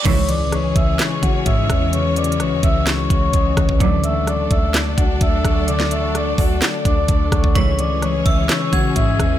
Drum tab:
CC |x-----------------------------------------------|------------------------------------------------|------------------------------------------------|------------------------------------------------|
HH |x-----x-----x-----x-----x-----x-----x-----x-----|x-----x-x-x-x-----x-----x-----x-----x-----x-----|x-----x-----x-----x-----x-----x-----x-----x-----|x-----x-----x-----o-----x-----x-----x-----x-----|
CP |------------------------x-----------------------|------------------------x-----------------------|------------------------x-----------------------|------------------------x-----------------------|
SD |------------r-----------o-----------------r-----|------------r-----------o-----------------r-----|------------r-----------o-----------------r-----|---o--------r-----------o-----------------r-----|
BD |o-----------------o-----------o-----o-----o-----|------------------o-----------o-----o-----o--o--|o-----------------o-----------o-----o-----o-----|------------------o-----------o-----o-----o--o--|

CC |------------------------------------------------|
HH |x-----x-----x-----x-----x-----x-----x-----x-----|
CP |------------------------x-----------------------|
SD |------------r-----------o-----------------r-----|
BD |o-----------------o-----------o-----o-----o-----|